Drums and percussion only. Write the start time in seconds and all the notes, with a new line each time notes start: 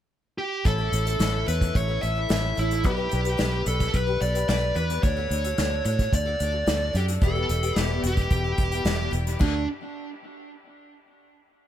0.65 kick, closed hi-hat
0.93 closed hi-hat
1.07 closed hi-hat
1.20 snare, closed hi-hat
1.48 closed hi-hat
1.61 kick, closed hi-hat
1.75 kick, closed hi-hat
2.03 closed hi-hat
2.30 snare, closed hi-hat
2.57 closed hi-hat
2.71 closed hi-hat
2.84 kick, closed hi-hat
3.11 closed hi-hat
3.25 closed hi-hat
3.39 snare, closed hi-hat
3.66 closed hi-hat
3.80 kick, snare, closed hi-hat
3.94 kick, closed hi-hat
4.21 closed hi-hat
4.35 closed hi-hat
4.48 snare, closed hi-hat
4.76 closed hi-hat
4.90 closed hi-hat
5.03 kick, closed hi-hat
5.31 closed hi-hat
5.44 closed hi-hat
5.58 snare, closed hi-hat
5.85 closed hi-hat
5.99 kick, closed hi-hat
6.13 kick, closed hi-hat
6.40 closed hi-hat
6.67 snare, closed hi-hat
6.95 closed hi-hat
7.08 closed hi-hat
7.22 kick, closed hi-hat
7.49 closed hi-hat
7.63 closed hi-hat
7.76 snare, closed hi-hat
8.04 closed hi-hat
8.17 kick, closed hi-hat
8.30 kick, closed hi-hat
8.58 kick, closed hi-hat
8.72 closed hi-hat
8.85 snare, closed hi-hat
9.13 closed hi-hat
9.27 closed hi-hat
9.41 kick, crash